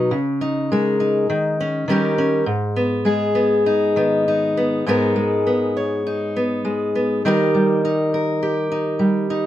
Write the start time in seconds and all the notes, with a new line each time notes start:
Already playing: F#3 D#4 F#4
0.11 C#3
0.41 D#4
0.72 G#3 A#4
1.00 D#4
1.30 D#3
1.60 C#4
1.88 D#3 G3 C#4 G4 A#4
2.18 C#4
2.46 G#2
2.76 B3
3.05 G#3 G#4
3.35 B3
3.66 D#4
3.96 D#3 B3
4.28 D#4
4.57 B3
4.86 G#2 G#3 B3 D#4 A#4
5.16 G#3
5.47 B3
5.77 C#5
6.07 D#4
6.36 B3
6.65 G#3
6.95 B3
7.25 D#3 G3 D#4 G4 A#4
7.55 G3
7.85 D#4
8.14 A#4
8.43 G4
8.72 D#4
8.99 G3
9.30 D#4